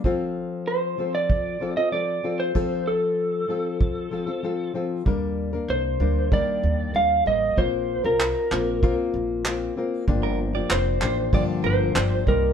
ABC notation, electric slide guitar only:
X:1
M:4/4
L:1/16
Q:1/4=96
K:Fmix
V:1 name="Electric slide guitar"
z4 c3 d4 e d3 c- | c2 A12 z2 | z4 c4 d4 f2 e2 | c3 B6 z6 z |
z4 c4 d2 c4 B2 |]